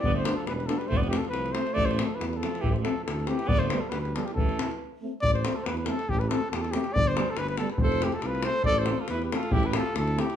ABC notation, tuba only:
X:1
M:2/4
L:1/8
Q:"Swing 16ths" 1/4=139
K:Am
V:1 name="Tuba" clef=bass
G,,,2 E,,,2 | F,,,2 C,,2 | A,,,2 E,,2 | A,,,2 D,,2 |
G,,,2 D,,2 | A,,,2 z2 | A,,,2 E,,2 | A,,,2 E,,2 |
G,,,2 G,,,2 | F,,,2 C,,2 | A,,,2 E,,2 | A,,,2 D,,2 |]